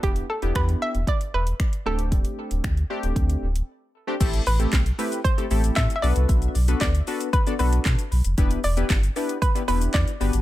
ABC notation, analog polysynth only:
X:1
M:4/4
L:1/16
Q:1/4=115
K:Em
V:1 name="Analog polysynth"
[B,DEG]2 z [B,DEG]4 z6 z [A,CDG]2- | [A,CDG]4 z2 [A,CDG]4 z4 z [A,CDG] | [A,CEGA]2 z [A,CEGA]2 z [A,CEGB]2 z [A,CEGA] [A,CEGA]3 z [B,DFAB]2- | [B,DFAB]2 z [B,DFAB]2 z [B,DFAB]2 z [B,DFAd] [B,DFAB]3 z3 |
[B,DEGB]2 z [B,DEGB]2 z [B,DEGB]2 z [B,DEGB] [B,DEGB]3 z [B,DFGB]2 |]